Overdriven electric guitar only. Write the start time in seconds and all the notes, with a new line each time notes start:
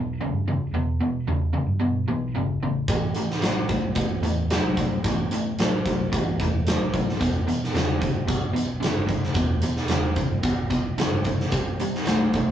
Already playing: E2 B2
0.21 E2 C#3
0.48 E2 C#3
0.74 E2 B2
1.01 E2 B2
1.28 E2 C#3
1.54 E2 C#3
1.80 E2 B2
2.08 E2 B2
2.36 E2 C#3
2.63 E2 C#3
2.89 A2 E3
3.16 A2 E3
3.42 A2 F#3
3.69 A2 F#3
3.96 A2 E3
4.23 A2 E3
4.51 A2 F#3
4.78 A2 F#3
5.05 A2 E3
5.32 A2 E3
5.59 A2 F#3
5.87 A2 F#3
6.12 A2 E3
6.40 A2 E3
6.67 A2 F#3
6.94 A2 F#3
7.20 E2 B2
7.47 E2 B2
7.74 E2 C#3
8.01 E2 C#3
8.27 E2 B2
8.53 E2 B2
8.80 E2 C#3
9.07 E2 C#3
9.35 E2 B2
9.63 E2 B2
9.89 E2 C#3
10.16 E2 C#3
10.43 E2 B2
10.70 E2 B2
10.98 E2 C#3
11.26 E2 C#3
11.52 C3 G3
11.80 C3 G3
12.07 C3 A3
12.35 C3 A3